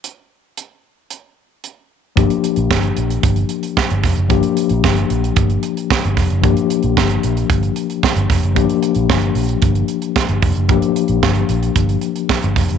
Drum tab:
HH |x---x---x---x---|xxxx-xxxxxxx-xox|xxxx-xxxxxxx-xox|xxxx-xxxxxxx-xox|
SD |----------------|----o-------o-o-|----o-------o-o-|----o-------o-o-|
BD |----------------|o---o---o---o-o-|o---o---o---o-o-|o---o---o---o-o-|

HH |xxxx-xoxxxxx-xox|xxxx-xxxxxxx-xox|
SD |----o-------o---|----o-------o-o-|
BD |o---o---o---o-o-|o---o---o---o-o-|